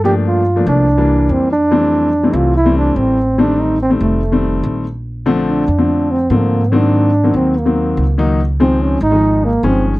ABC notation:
X:1
M:4/4
L:1/16
Q:1/4=144
K:Fmix
V:1 name="Trombone"
G2 F4 D6 C2 D2- | D6 F2 =E2 D2 C4 | D2 E2 C2 A,8 z2 | [K:Bb] z4 D6 C2 B,4 |
D6 C2 B,6 z2 | z2 C2 _D2 E4 B,2 C2 z2 |]
V:2 name="Grand piano" clef=bass
[F,A,B,D]4 z [F,A,B,D]3 z [=E,G,B,D]4- [E,G,B,D] z2 | [=E,G,A,C]4 z [E,G,A,C]3 z [E,G,A,C]4- [E,G,A,C] z2 | [E,G,A,C]4 z [E,G,A,C]3 z [E,G,A,C]4- [E,G,A,C] z2 | [K:Bb] z2 [D,F,A,C]4 z [D,F,A,C]3 z2 [D,F,A,C]3 z |
[E,_G,B,C]4 z [E,G,B,C]3 z [E,G,B,C]3 z2 [E,G,B,E]2 | z2 [E,F,_A,C]4 z [E,F,A,E]3 z2 [E,F,A,_D]3 z |]
V:3 name="Upright bass" clef=bass
G,,6 C,,6 F,,4- | F,,6 C,,6 A,,,4- | A,,,6 F,,,6 B,,,4- | [K:Bb] B,,,6 F,,6 _A,,4- |
_A,,6 E,,6 _D,,4- | _D,,6 _A,,,6 G,,,4 |]